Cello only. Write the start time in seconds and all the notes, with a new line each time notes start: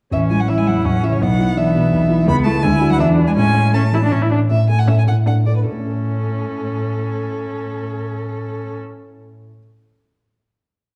0.13 E3
0.30 G#3
0.40 F#3
0.48 E3
0.58 G#3
0.67 F#3
0.85 F#3
1.03 E3
1.11 C#3
1.19 F#3
1.55 E3
2.27 B3
2.45 A3
2.62 G#3
2.89 F#3
2.99 E3
3.27 G#3
3.36 G#3
3.74 A3
4.87 A2
5.26 A2
5.65 A2